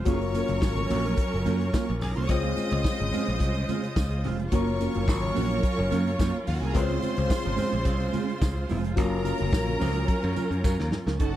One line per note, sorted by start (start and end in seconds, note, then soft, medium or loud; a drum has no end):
0.00 2.25 F4 medium
0.05 0.41 F#1 loud
0.05 2.24 F#3 medium
0.05 2.27 F#3 medium
0.05 2.25 A#3 medium
0.05 0.25 A#3 medium
0.05 2.25 C#4 medium
0.05 2.27 C#4 medium
0.05 0.21 C#4 medium
0.05 2.26 F4 medium
0.05 0.20 F4 loud
0.05 0.14 G#4 medium
0.05 2.28 A#4 loud
0.05 1.93 C#5 medium
0.05 1.93 C#6 loud
0.05 kick loud
0.05 closed hi-hat medium
0.05 tambourine medium
0.05 muted conga soft
0.14 2.29 A#4 medium
0.21 muted clean electric guitar stroke soft
0.21 closed hi-hat soft
0.34 0.49 A#3 medium
0.34 0.49 C#4 medium
0.34 0.48 F4 medium
0.34 closed hi-hat medium
0.34 tambourine medium
0.34 high conga medium
0.48 0.60 F#1 medium
0.48 0.61 A#3 soft
0.48 0.62 C#4 soft
0.48 0.62 F4 soft
0.48 closed hi-hat medium
0.48 high conga medium
0.62 0.85 G#1 medium
0.62 kick loud
0.62 snare loud
0.62 tambourine medium
0.75 muted clean electric guitar stroke soft
0.75 closed hi-hat soft
0.75 muted conga soft
0.75 high conga medium
0.90 1.13 A#1 loud
0.90 1.07 A#3 loud
0.90 1.05 C#4 loud
0.90 1.05 F#4 loud
0.90 open hi-hat medium
0.90 tambourine medium
0.90 low conga medium
1.05 1.17 A#3 medium
1.05 1.18 C#4 medium
1.05 1.18 F4 medium
1.05 closed hi-hat soft
1.17 muted clean electric guitar stroke soft
1.17 kick loud
1.17 closed hi-hat medium
1.17 muted conga soft
1.33 1.44 F#1 loud
1.33 muted clean electric guitar stroke medium
1.33 muted conga soft
1.45 1.69 F#2 medium
1.45 1.64 A#3 medium
1.45 1.60 C#4 medium
1.45 1.59 F4 medium
1.45 closed hi-hat medium
1.45 tambourine soft
1.45 high conga medium
1.60 muted clean electric guitar stroke soft
1.60 closed hi-hat soft
1.73 1.92 A#3 medium
1.73 1.88 C#4 medium
1.73 1.87 F4 medium
1.73 kick loud
1.73 snare loud
1.73 tambourine loud
1.88 2.02 A#1 medium
1.88 muted clean electric guitar stroke medium
2.01 2.14 B1 medium
2.01 2.09 G#4 medium
2.01 2.09 G#5 medium
2.01 muted clean electric guitar stroke soft
2.01 snare soft
2.01 open hi-hat medium
2.01 low conga medium
2.08 2.16 A#4 medium
2.08 2.16 A#5 medium
2.16 2.27 C2 medium
2.16 2.28 A#3 soft
2.16 2.29 C#4 medium
2.16 2.28 F4 medium
2.16 2.23 C5 medium
2.16 2.23 C6 medium
2.16 closed hi-hat soft
2.23 2.30 C#5 medium
2.23 2.30 C#6 loud
2.29 2.52 C#2 loud
2.29 4.50 C#3 medium
2.29 4.48 G#3 medium
2.29 4.50 G#3 medium
2.29 4.48 C4 medium
2.29 4.49 C#4 medium
2.29 11.16 F4 medium
2.29 4.49 F4 medium
2.29 4.50 C5 medium
2.29 4.49 C5 medium
2.29 4.21 D#5 medium
2.29 4.20 D#6 loud
2.29 muted clean electric guitar stroke soft
2.29 kick loud
2.29 closed hi-hat medium
2.29 tambourine medium
2.43 2.56 G#3 medium
2.43 2.56 C4 medium
2.43 2.57 F4 medium
2.43 closed hi-hat soft
2.43 muted conga soft
2.56 2.72 G#3 medium
2.56 2.72 C4 medium
2.56 2.70 F4 medium
2.56 closed hi-hat medium
2.56 tambourine medium
2.56 high conga medium
2.70 2.83 C#2 loud
2.70 muted clean electric guitar stroke soft
2.70 closed hi-hat soft
2.70 high conga medium
2.84 kick loud
2.84 snare loud
2.84 tambourine medium
2.98 3.11 G#1 medium
2.98 muted clean electric guitar stroke soft
2.98 closed hi-hat soft
2.98 high conga medium
3.12 3.31 G#3 medium
3.12 3.28 C4 loud
3.12 3.26 F4 medium
3.12 open hi-hat medium
3.12 tambourine medium
3.12 low conga medium
3.27 3.39 A#1 medium
3.27 muted clean electric guitar stroke soft
3.27 closed hi-hat soft
3.40 3.63 C2 medium
3.40 muted clean electric guitar stroke medium
3.40 kick medium
3.40 closed hi-hat medium
3.40 muted conga soft
3.54 muted clean electric guitar stroke soft
3.54 closed hi-hat soft
3.69 3.87 G#3 medium
3.69 3.84 C4 medium
3.69 3.83 F4 medium
3.69 closed hi-hat medium
3.69 tambourine soft
3.69 high conga medium
3.83 muted clean electric guitar stroke soft
3.83 closed hi-hat soft
3.96 4.27 C#2 medium
3.96 kick loud
3.96 snare loud
3.96 tambourine loud
4.10 muted clean electric guitar stroke soft
4.10 closed hi-hat soft
4.24 4.47 F1 medium
4.24 4.43 G#3 medium
4.24 4.40 C4 medium
4.24 4.38 F4 loud
4.24 snare soft
4.24 open hi-hat medium
4.24 low conga medium
4.39 muted clean electric guitar stroke soft
4.39 closed hi-hat soft
4.51 4.87 F#1 loud
4.51 6.72 F#3 medium
4.51 6.71 F#3 medium
4.51 4.70 A#3 medium
4.51 6.71 A#3 medium
4.51 6.72 C#4 medium
4.51 4.67 C#4 medium
4.51 6.71 C#4 medium
4.51 4.66 F4 loud
4.51 6.72 F4 medium
4.51 6.72 A#4 loud
4.51 6.72 A#4 medium
4.51 6.38 C#5 medium
4.51 6.38 C#6 loud
4.51 kick loud
4.51 closed hi-hat medium
4.51 tambourine medium
4.51 muted conga soft
4.67 muted clean electric guitar stroke soft
4.67 closed hi-hat soft
4.67 muted conga soft
4.80 4.95 A#3 medium
4.80 4.94 C#4 medium
4.80 4.93 F4 medium
4.80 closed hi-hat medium
4.80 tambourine medium
4.80 high conga medium
4.94 5.08 F#1 medium
4.94 5.05 A#3 soft
4.94 5.06 C#4 soft
4.94 5.07 F4 soft
4.94 closed hi-hat soft
4.94 high conga medium
5.08 5.31 G#1 medium
5.08 kick loud
5.08 snare loud
5.08 tambourine medium
5.08 muted conga soft
5.22 muted clean electric guitar stroke medium
5.22 closed hi-hat soft
5.22 muted conga soft
5.22 high conga medium
5.34 5.59 A#1 loud
5.34 5.50 A#3 loud
5.34 5.49 C#4 medium
5.34 5.49 F#4 loud
5.34 open hi-hat medium
5.34 tambourine medium
5.34 low conga medium
5.49 5.62 A#3 medium
5.49 5.63 C#4 medium
5.49 5.63 F4 medium
5.49 closed hi-hat soft
5.63 muted clean electric guitar stroke soft
5.63 kick loud
5.63 closed hi-hat medium
5.63 tambourine soft
5.77 5.89 F#1 loud
5.77 muted clean electric guitar stroke soft
5.91 6.15 F#2 medium
5.91 6.10 A#3 medium
5.91 6.05 C#4 medium
5.91 6.04 F4 loud
5.91 closed hi-hat medium
5.91 tambourine soft
5.91 high conga medium
6.05 muted clean electric guitar stroke soft
6.05 closed hi-hat soft
6.18 6.31 F#2 medium
6.18 6.37 A#3 medium
6.18 6.34 C#4 medium
6.18 6.33 F4 medium
6.18 kick loud
6.18 snare loud
6.18 tambourine loud
6.34 muted clean electric guitar stroke soft
6.34 muted conga soft
6.47 6.59 D#2 medium
6.47 6.55 F4 medium
6.47 6.55 F5 medium
6.47 muted clean electric guitar stroke soft
6.47 open hi-hat medium
6.47 tambourine soft
6.47 low conga medium
6.55 6.62 F#4 medium
6.55 6.62 F#5 medium
6.61 6.73 C2 medium
6.61 6.73 A#3 soft
6.61 6.74 C#4 medium
6.61 6.74 F4 medium
6.61 6.69 G#4 medium
6.61 6.69 G#5 medium
6.61 closed hi-hat soft
6.70 8.93 G#3 medium
6.70 6.75 A#4 medium
6.70 6.76 A#5 loud
6.74 6.98 C#2 loud
6.74 8.95 C#3 medium
6.74 8.95 G#3 medium
6.74 8.93 C4 medium
6.74 8.94 C#4 medium
6.74 8.94 F4 medium
6.74 6.82 B4 medium
6.74 8.96 C5 medium
6.74 8.67 C5 medium
6.74 8.67 C6 loud
6.74 muted clean electric guitar stroke soft
6.74 kick loud
6.74 closed hi-hat medium
6.74 tambourine medium
6.83 8.98 C5 medium
6.88 6.99 G#3 medium
6.88 7.01 C4 medium
6.88 7.02 F4 medium
6.88 closed hi-hat soft
7.01 7.16 G#3 medium
7.01 7.16 C4 medium
7.01 7.15 F4 medium
7.01 closed hi-hat medium
7.01 tambourine medium
7.01 high conga medium
7.16 7.28 C#2 loud
7.16 closed hi-hat soft
7.16 high conga medium
7.30 kick loud
7.30 snare loud
7.30 tambourine medium
7.44 7.56 G#1 medium
7.44 muted clean electric guitar stroke medium
7.44 closed hi-hat soft
7.44 high conga medium
7.56 7.75 G#3 loud
7.56 7.71 C4 loud
7.56 7.70 F4 loud
7.56 open hi-hat medium
7.56 tambourine medium
7.56 low conga medium
7.71 7.84 A#1 loud
7.71 muted clean electric guitar stroke soft
7.71 closed hi-hat soft
7.85 8.08 C2 loud
7.85 muted clean electric guitar stroke soft
7.85 kick loud
7.85 closed hi-hat medium
7.85 tambourine soft
7.85 muted conga soft
8.00 muted clean electric guitar stroke medium
8.00 closed hi-hat soft
8.12 8.31 G#3 medium
8.12 8.28 C4 medium
8.12 8.27 F4 medium
8.12 closed hi-hat medium
8.12 tambourine soft
8.12 high conga medium
8.28 muted clean electric guitar stroke soft
8.28 closed hi-hat soft
8.41 8.64 C#2 medium
8.41 muted clean electric guitar stroke soft
8.41 kick loud
8.41 snare loud
8.41 tambourine loud
8.41 muted conga soft
8.56 muted clean electric guitar stroke soft
8.56 muted conga soft
8.69 8.97 F1 medium
8.69 8.90 G#3 medium
8.69 8.84 C4 medium
8.69 8.82 F4 medium
8.69 open hi-hat medium
8.69 tambourine soft
8.69 low conga medium
8.84 muted clean electric guitar stroke soft
8.84 closed hi-hat soft
8.96 9.32 F#1 loud
8.96 11.16 F#3 medium
8.96 11.18 F#3 medium
8.96 11.16 A#3 medium
8.96 9.15 C#4 medium
8.96 11.16 C#4 medium
8.96 11.18 C#4 medium
8.96 9.11 F4 medium
8.96 11.17 F4 medium
8.96 11.18 A#4 medium
8.96 9.09 A#4 loud
8.96 11.17 A#4 medium
8.96 10.89 A#4 medium
8.96 10.89 A#5 loud
8.96 kick loud
8.96 closed hi-hat medium
8.96 tambourine medium
8.96 muted conga soft
9.10 muted clean electric guitar stroke soft
9.24 9.39 C#4 medium
9.24 9.38 F4 medium
9.24 9.38 A#4 medium
9.24 closed hi-hat medium
9.24 tambourine medium
9.24 high conga medium
9.38 9.51 C#4 soft
9.38 9.52 F4 soft
9.38 9.53 A#4 medium
9.38 closed hi-hat medium
9.38 high conga medium
9.42 9.52 F#1 loud
9.53 9.76 A#1 medium
9.53 kick loud
9.53 snare loud
9.53 tambourine loud
9.66 muted clean electric guitar stroke soft
9.66 closed hi-hat soft
9.66 muted conga soft
9.66 high conga medium
9.80 10.04 C#2 loud
9.80 9.95 C#4 medium
9.80 9.94 F4 medium
9.80 9.94 C5 loud
9.80 open hi-hat medium
9.80 tambourine medium
9.80 low conga medium
9.94 10.07 C#4 medium
9.94 10.08 F4 medium
9.94 10.08 A#4 medium
9.94 closed hi-hat soft
10.08 muted clean electric guitar stroke soft
10.08 kick medium
10.08 closed hi-hat medium
10.08 tambourine soft
10.22 10.34 F#2 loud
10.22 muted clean electric guitar stroke medium
10.22 closed hi-hat soft
10.22 muted conga soft
10.35 10.55 C#4 medium
10.35 10.50 F4 medium
10.35 10.49 A#4 medium
10.35 closed hi-hat medium
10.35 tambourine soft
10.35 high conga medium
10.50 10.62 F#2 medium
10.50 muted clean electric guitar stroke soft
10.50 closed hi-hat soft
10.63 10.77 F#2 medium
10.63 10.82 C#4 medium
10.63 10.78 F4 medium
10.63 10.76 A#4 medium
10.63 kick loud
10.63 snare medium
10.63 tambourine loud
10.77 10.90 D#2 medium
10.77 muted clean electric guitar stroke soft
10.77 snare medium
10.77 muted conga soft
10.91 muted clean electric guitar stroke soft
10.91 snare medium
10.91 low conga medium
11.06 11.18 C#2 medium
11.06 11.17 C#4 soft
11.06 11.20 F4 medium
11.06 11.20 A#4 medium
11.06 snare medium
11.19 11.36 F#1 medium
11.19 11.36 F#3 medium
11.19 11.36 C#4 medium
11.19 11.36 D#4 medium
11.19 11.34 D#4 loud
11.19 11.36 F#4 medium
11.19 11.33 A4 loud
11.19 11.36 F#5 medium
11.19 11.36 A5 loud
11.19 kick loud
11.19 closed hi-hat medium